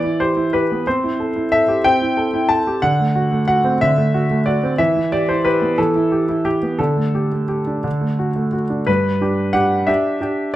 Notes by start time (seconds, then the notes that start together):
Already playing: E3 D5
0.04 E4
0.20 G4 C5
0.37 E4
0.53 G4 B4
0.72 B3
0.87 C4 C5
1.04 E4
1.20 A4
1.36 E4
1.52 A4 E5
1.68 G4
1.84 C4 G5
2.02 E4
2.17 A4
2.34 E4
2.49 A4 A5
2.67 G4
2.82 D3 F#5
3.00 A3
3.15 F#4
3.32 A3
3.48 F#4 F#5
3.64 C4
3.81 D3 E5
3.98 A3
4.14 F#4
4.31 A3
4.46 F#4 D5
4.63 C4
4.78 E3 E5
4.96 E4
5.12 G4 D5
5.29 E4 C5
5.45 G4 B4
5.62 B3
5.78 E3 A4
5.96 E4
6.12 G4
6.29 E4
6.45 G4
6.63 B3
6.79 D3 A4
6.97 A3
7.15 G4
7.32 A3
7.48 G4
7.67 D4
7.84 D3
8.01 A3
8.19 F#4
8.36 A3
8.53 F#4
8.70 D4
8.87 G2 B4
9.21 D4 G4
9.53 D4 G4 F#5
9.87 D4 G4 E5
10.21 D4 G4